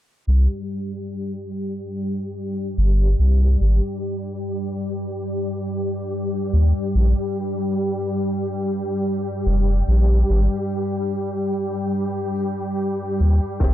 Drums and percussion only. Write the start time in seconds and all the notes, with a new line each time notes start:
0.27 tambourine
0.68 tambourine
1.10 tambourine
1.52 tambourine
1.74 tambourine
1.93 tambourine
2.35 tambourine
2.76 tambourine
3.19 tambourine
3.40 tambourine
3.59 tambourine
4.02 tambourine
4.24 tambourine
4.44 tambourine
4.85 tambourine
5.07 tambourine
5.26 tambourine
5.48 triangle
5.68 tambourine
5.89 tambourine
6.09 tambourine
6.51 tambourine
6.74 tambourine, triangle
6.93 tambourine
7.35 tambourine
7.57 tambourine
7.77 tambourine
8.19 tambourine
8.41 tambourine
8.61 tambourine
9.02 tambourine
9.25 tambourine
9.44 tambourine
9.86 tambourine
10.07 tambourine
10.27 tambourine
10.50 tambourine
10.69 tambourine
10.92 tambourine
11.11 tambourine
11.53 tambourine
11.74 tambourine
11.93 tambourine
12.16 triangle
12.35 tambourine
12.57 tambourine
12.77 tambourine
13.19 tambourine
13.41 tambourine, triangle
13.60 kick, ride, tambourine